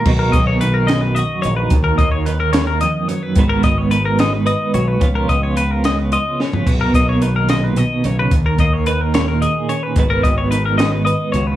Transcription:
<<
  \new Staff \with { instrumentName = "Clean electric guitar" } { \time 6/8 \key ces \lydian \tempo 4. = 73 r16 ais'16 dis''16 des''16 b'16 ais'16 dis''16 b'16 dis''8 des''16 b'16 | r16 bes'16 ees''16 des''16 ces''16 bes'16 des''16 bes'16 ees''8 des''16 ces''16 | r16 bes'16 ees''16 des''16 ces''16 bes'16 ees''16 ces''16 ees''8 des''16 ces''16 | r16 bes'16 ees''16 des''16 ces''16 bes'16 ees''16 ces''16 ees''8 des''16 ces''16 |
r16 ais'16 dis''16 des''16 b'16 ais'16 dis''16 b'16 dis''8 des''16 b'16 | r16 bes'16 ees''16 des''16 ces''16 bes'16 des''16 bes'16 ees''8 des''16 ces''16 | r16 bes'16 ees''16 des''16 ces''16 bes'16 ees''16 ces''16 ees''8 des''16 ces''16 | }
  \new Staff \with { instrumentName = "Clean electric guitar" } { \clef bass \time 6/8 \key ces \lydian << { <dis ais dis' fis'>8 aes16 ais4~ ais16 fis'8 dis'8 | r8 bes2~ bes8 | <ees ces' ges' ces''>8 ces'4. ces''8 ges'8 | <f ces' des' f'>8 ces'4. f'8 des'8 |
r8 ais2~ ais8 | r8 bes4. aes'8 des'8 | <ees ces' ges' ces''>8 ces'4. ces''8 ges'8 | } \\ { b,4 dis8 fis,4. | ees,4 ees8 ees,8 f,8 ges,8 | aes,4 ees8 ees4. | des4 f8 des4. |
b,4 dis8 ais,8 b,8 des8 | ees,4 ees8 bes,4. | aes,4 ees8 ees4. | } >> }
  \new Staff \with { instrumentName = "Fingered electric bass" } { \clef bass \time 6/8 \key ces \lydian b,,8 b,,2 ais,,8 | ees,8 ees,2 r8 | aes,,8 aes,,2 ces,8 | des,8 des,2 r8 |
b,,8 b,,2 b,,8 | ees,8 ees,2 r8 | aes,,8 aes,,2 des,8 | }
  \new DrumStaff \with { instrumentName = "Drums" } \drummode { \time 6/8 <cymc bd>8 <hh bd>8 hh8 <hh sn>8 hh8 hh8 | <hh bd>8 <hh bd>8 hh8 <hh sn>8 hh8 hh8 | <hh bd>8 <hh bd>8 hh8 <hh sn>8 hh8 hh8 | <hh bd>8 <hh bd>8 hh8 <hh sn>8 hh8 sn16 tomfh16 |
<cymc hh bd>8 <hh bd>8 hh8 <hh sn>8 hh8 hh8 | <hh bd>8 <hh bd>8 hh8 <hh sn>8 hh8 hh8 | <hh bd>8 <hh bd>8 hh8 <hh sn>8 hh8 hh8 | }
>>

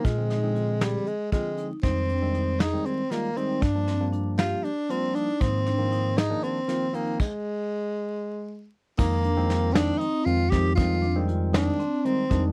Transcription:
<<
  \new Staff \with { instrumentName = "Vibraphone" } { \time 7/8 \key bes \mixolydian \tempo 4 = 117 f'8 ees'8 f'8 aes'4 f'8 ees'8 | ees'8 d'8 ees'8 aes'4 f'8 ees'8 | d'8 c'8 d'8 g'4 f'8 ees'8 | ees'8 d'8 ees'8 aes'4 f'8 ees'8 |
r2. r8 | ees'8 d'8 f'8 ees'8 c'4 ees'8 | ees'8 d'8 f'8 ees'8 c'4 ees'8 | }
  \new Staff \with { instrumentName = "Tenor saxophone" } { \time 7/8 \key bes \mixolydian aes4. g8 aes8 aes8. r16 | c'4. ees'8 c'8 bes8 c'8 | d'4 r8 f'8 d'8 c'8 d'8 | c'4. ees'8 c'4 bes8 |
aes2. r8 | bes4. d'8 ees'8 f'8 g'8 | f'4 r8 d'4 c'8. r16 | }
  \new Staff \with { instrumentName = "Tine electric piano" } { \clef bass \time 7/8 \key bes \mixolydian r16 <d f aes c'>16 r16 <d f aes c'>4~ <d f aes c'>16 r8 <d f aes c'>8. r16 | <ees g aes c'>8 r16 <ees g aes c'>8. r16 <ees g aes c'>8 r16 <ees g aes bes>16 r16 <ees g aes c'>8 | r16 <f g bes d'>16 r16 <f g bes d'>4~ <f g bes d'>16 r8 <f g bes d'>8. r16 | <ees f bes c'>8 r16 <ees f bes c'>8. r16 <ees f bes d'>8 r16 <ees f bes c'>16 r16 <ees f bes c'>8 |
r2. r8 | <ees f aes c'>8 r16 <ees f aes c'>4~ <ees f aes c'>16 r8 <ees f aes c'>16 r16 <ees f aes c'>16 r16 | <ees g aes c'>8 r16 <ees g aes c'>4~ <ees g aes c'>16 r8 <ees g aes ees'>16 r16 <ees g aes d'>16 r16 | }
  \new Staff \with { instrumentName = "Tine electric piano" } { \clef bass \time 7/8 \key bes \mixolydian bes,2 r4. | f,2 r4. | g,2 r4. | aes,2 r4. |
r2. r8 | f,2 r8 f,8 f,8 | f,2 r4 f,8 | }
  \new DrumStaff \with { instrumentName = "Drums" } \drummode { \time 7/8 <hh bd>8 <hh sn>8 hh8 <hh sn>8 hh8 <hh bd>8 hh8 | <hh bd>8 hh8 hh8 <hh sn>8 hh8 <hh sn>8 hh8 | <hh bd>8 <hh sn>8 hh8 <hh sn>8 hh8 hh8 hh8 | <hh bd>8 <hh sn>8 hh8 <hh sn>8 hh8 <hh sn>8 hh8 |
<cymc bd>4. r4 r4 | <cymc bd>8 hh8 <hh sn>8 <hh sn>8 hh8 hh8 <hh bd sn>8 | <hh bd>8 hh8 hh8 <hh sn>8 hh8 hh8 <hh bd>8 | }
>>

